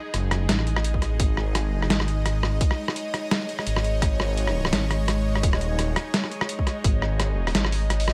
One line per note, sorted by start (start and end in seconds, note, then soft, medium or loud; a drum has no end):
0.00 8.13 G#3 medium
0.00 8.13 D#4 medium
0.00 1.91 G#4 medium
0.00 8.13 D#5 medium
0.14 0.48 F#1 loud
0.14 cross-stick soft
0.14 closed hi-hat medium
0.31 cross-stick medium
0.31 closed hi-hat soft
0.49 1.18 A1 loud
0.49 snare loud
0.49 closed hi-hat medium
0.59 cross-stick soft
0.67 closed hi-hat soft
0.76 cross-stick medium
0.84 closed hi-hat medium
0.94 kick medium
1.02 cross-stick soft
1.02 closed hi-hat soft
1.20 1.69 G#1 loud
1.20 kick loud
1.20 closed hi-hat medium
1.37 cross-stick medium
1.55 cross-stick medium
1.55 closed hi-hat medium
1.69 1.89 G1 loud
1.82 cross-stick soft
1.89 2.59 G#1 loud
1.89 7.56 C#5 medium
1.89 snare loud
1.89 closed hi-hat medium
2.00 cross-stick medium
2.08 closed hi-hat soft
2.26 cross-stick medium
2.26 closed hi-hat medium
2.43 cross-stick medium
2.61 kick loud
2.61 closed hi-hat medium
2.71 cross-stick medium
2.88 cross-stick medium
2.96 closed hi-hat medium
3.14 cross-stick medium
3.14 closed hi-hat soft
3.31 cross-stick medium
3.31 snare loud
3.31 closed hi-hat medium
3.49 closed hi-hat soft
3.59 cross-stick medium
3.67 4.01 G#1 loud
3.67 closed hi-hat medium
3.76 cross-stick medium
3.84 closed hi-hat soft
4.02 4.71 G#1 loud
4.02 kick loud
4.02 cross-stick medium
4.02 closed hi-hat medium
4.20 cross-stick medium
4.37 closed hi-hat medium
4.47 cross-stick medium
4.65 cross-stick medium
4.73 5.42 G#1 loud
4.73 snare loud
4.73 closed hi-hat medium
4.91 cross-stick medium
4.91 closed hi-hat soft
5.08 cross-stick medium
5.08 closed hi-hat medium
5.35 cross-stick medium
5.43 5.95 D#1 loud
5.43 kick loud
5.43 closed hi-hat medium
5.53 cross-stick medium
5.61 closed hi-hat soft
5.79 cross-stick medium
5.79 closed hi-hat medium
5.96 cross-stick medium
5.96 closed hi-hat soft
6.14 snare loud
6.14 closed hi-hat medium
6.24 cross-stick medium
6.31 closed hi-hat soft
6.41 cross-stick medium
6.49 closed hi-hat medium
6.59 kick medium
6.67 cross-stick medium
6.67 closed hi-hat soft
6.84 7.54 G#1 loud
6.84 kick loud
6.84 closed hi-hat medium
7.02 cross-stick medium
7.20 cross-stick medium
7.20 closed hi-hat medium
7.47 cross-stick medium
7.47 open hi-hat soft
7.54 8.13 G#1 medium
7.54 8.13 G#4 medium
7.54 snare loud
7.54 closed hi-hat medium
7.65 cross-stick medium
7.72 open hi-hat medium
7.90 cross-stick medium
7.90 closed hi-hat medium
8.00 open hi-hat medium
8.08 cross-stick medium